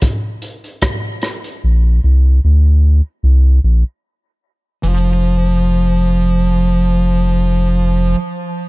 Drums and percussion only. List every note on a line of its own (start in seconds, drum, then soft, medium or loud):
0.02 kick loud
0.02 closed hi-hat loud
0.42 closed hi-hat medium
0.64 closed hi-hat medium
0.82 kick loud
0.82 cross-stick loud
0.82 closed hi-hat loud
1.22 cross-stick medium
1.22 closed hi-hat medium
1.44 closed hi-hat soft